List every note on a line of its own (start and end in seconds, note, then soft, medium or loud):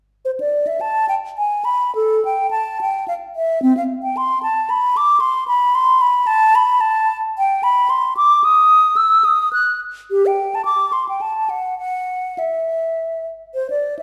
0.25 0.31 C5 medium
0.40 0.68 D5 medium
0.67 0.82 E5 medium
0.81 1.08 A5 medium
1.09 1.15 G5 soft
1.38 1.66 G#5 medium
1.65 1.94 B5 medium
1.95 2.24 A4 medium
2.25 2.50 G5 medium
2.51 2.79 A5 medium
2.81 3.07 G5 medium
3.08 3.14 F5 medium
3.36 3.62 E5 medium
3.62 3.75 C4 medium
3.77 3.83 F5 medium
4.03 4.19 G5 medium
4.17 4.42 C6 medium
4.43 4.72 A5 medium
4.70 4.98 B5 medium
4.97 5.22 D6 medium
5.20 5.47 C6 medium
5.48 5.76 B5 medium
5.75 6.03 C6 medium
6.01 6.28 B5 medium
6.27 6.57 A5 medium
6.55 6.82 B5 medium
6.81 7.18 A5 medium
7.38 7.65 G5 medium
7.63 7.91 B5 medium
7.90 8.16 C6 medium
8.17 8.46 D6 medium
8.44 8.98 D#6 medium
8.97 9.26 E6 medium
9.25 9.52 D#6 medium
9.53 9.80 F#6 medium
10.11 10.28 G4 medium
10.26 10.56 G5 medium
10.55 10.64 A5 medium
10.65 10.94 D6 medium
10.93 11.07 C6 medium
11.09 11.23 G5 soft
11.21 11.51 A5 medium
11.50 11.78 F#5 medium
11.78 12.40 F#5 medium
12.39 13.27 E5 soft
13.54 13.68 C5 medium
13.70 13.97 D5 medium
13.99 14.03 E5 medium